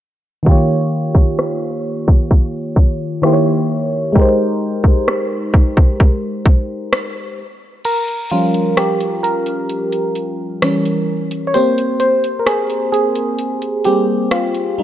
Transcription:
0.43 D#3 A#3, kick
0.47 F4 G4
0.51 C#5
1.15 kick
1.39 cross-stick
2.08 kick
2.31 kick
2.76 kick
3.22 D#3 A#3 E4 G4, cross-stick
3.26 C5
3.33 C#5
4.12 G#3 D#4, kick
4.17 G4 A#4
4.21 C5
4.84 kick
5.08 cross-stick
5.54 kick
5.77 kick
6.00 kick
6.46 kick
6.93 cross-stick
7.85 A#4, closed hi-hat, crash
8.08 closed hi-hat
8.30 F3 G3 C#4 F4, closed hi-hat
8.54 closed hi-hat
8.77 G4, cross-stick, closed hi-hat
9.01 closed hi-hat
9.23 A#4, closed hi-hat
9.46 closed hi-hat
9.70 closed hi-hat
9.93 closed hi-hat
10.15 closed hi-hat
10.62 E3 G3 C#4, cross-stick, closed hi-hat
10.85 closed hi-hat
11.31 closed hi-hat
11.47 C#5
11.54 A#3 C4 G4 C5, closed hi-hat
11.78 closed hi-hat
12.00 C5, closed hi-hat
12.24 closed hi-hat
12.39 A#4
12.46 G#4, cross-stick, closed hi-hat
12.70 closed hi-hat
12.92 G#4, closed hi-hat
13.16 closed hi-hat
13.39 closed hi-hat
13.62 closed hi-hat
13.84 G3 A#3 C4 G4, closed hi-hat
14.31 F4, cross-stick, closed hi-hat
14.55 closed hi-hat
14.78 G3 G#3 D#4

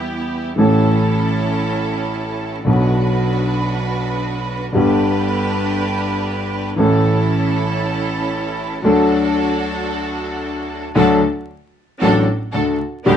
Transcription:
Already playing: E2 E3 G3 B3 E4 G4
0.56 A1 A2 E3 A3 C#4 E4 A4
0.60 A4
2.65 B1 B2 D3 F#3 B3 D4 F#4 B4
4.72 G1 G2 D3 G3 B3 D4 G4 B4
4.77 G4
6.76 A1 A2 E3 A3 C#4 E4 A4
8.82 D2 D3 F#3 A3 D4 F#4 A4
8.87 A4
10.95 D2 D3 F#3 A3 D4 F#4 A4
12.01 A1 A2 F#3 A3 D4 F#4 A4
12.53 D2 D3 D4 F#4 A4
13.06 D2 D3 G3 B3 D4 G4

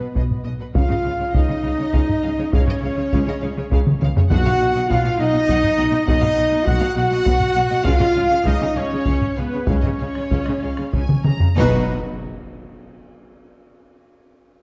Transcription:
Already playing: B3 B4
0.15 B1 B2 D#5, taiko
0.31 taiko low-mid
0.45 B1 B2 D#5
0.60 B2 B4
0.74 C#2 C#3 F4 F5, taiko
0.89 C#3 D#5, taiko low-mid
1.04 C#2 C#3 F5
1.20 C#3 C#5
1.34 C#2 C#3 D#4 D#5 F5, taiko
1.48 C#3 D#5
1.63 C#2 C#3 F5
1.78 C#3 C#5
1.92 C#2 C#3 F5, taiko
2.09 taiko low-mid
2.23 C#2 C#3 F5
2.38 C#3 C#5
2.52 C#2 C#3 C#4 C#5 F5, taiko
2.67 C#3 D#5, taiko low-mid
2.82 C#2 C#3 F5
2.97 C#3 C#5
3.13 C#2 C#3 F5, taiko
3.27 C#3 D#5
3.41 C#2 C#3 F5
3.57 C#3 C#5
3.71 C#2 C#3 F5, taiko
3.87 taiko mid
4.01 C#2 C#3 F5, taiko mid
4.16 C#3 C#5, taiko low
4.30 B1 B2 F#4 F#5, taiko
4.46 B2 F5, taiko low-mid
4.60 B1 B2 F#5
4.75 B2 D#5
4.88 B1 B2 F4 F5 F#5, taiko
5.05 B2 F5
5.18 B1 B2 D#4 D#5 F#5
5.33 B2 D#5
5.48 B1 B2 F#5, taiko
5.64 taiko low-mid
5.77 B1 B2 F#5
5.91 B2 D#5
6.05 B1 B2 D#4 D#5 F#5, taiko
6.20 B2 F5, taiko low-mid
6.34 B1 B2 F#5
6.47 B2 D#5
6.64 B1 B2 F#4 F#5, taiko
6.79 B2 F5
6.94 B1 B2 F#4 F#5
7.11 B2 D#5
7.25 B1 B2 F#5, taiko
7.40 taiko low-mid
7.54 B1 B2 F#5
7.69 B2 D#5
7.83 C#2 C#3 F4 F5, taiko
7.99 C#3 D#5, taiko low-mid
8.13 C#2 C#3 F5
8.29 C#3 C#5
8.44 C#2 C#3 D#4 D#5 F5, taiko
8.59 C#3 D#5
8.76 C#2 C#3 C#4 C#5 F5
8.90 C#3 C#5
9.04 C#2 C#3 F5, taiko
9.21 taiko low-mid
9.36 C#2 C#3 B3 B4 F5
9.52 C#3 C#5
9.67 C#2 C#3 C#4 C#5 F5, taiko
9.82 C#3 D#5, taiko low-mid
9.99 C#2 C#3 F5
10.13 C#3 C#5, taiko rim
10.29 C#2 C#3 F5, taiko
10.43 D#5, taiko rim
10.48 C#3
10.60 C#2 C#3 F5
10.77 C#3, taiko rim
10.93 C#2 C#3 G#5, taiko
11.09 taiko mid
11.25 C#2 C#3 A#5, taiko mid
11.40 C#3, taiko low
11.55 B1 B2 D#4 F#4 B4 D#5 B5, impact

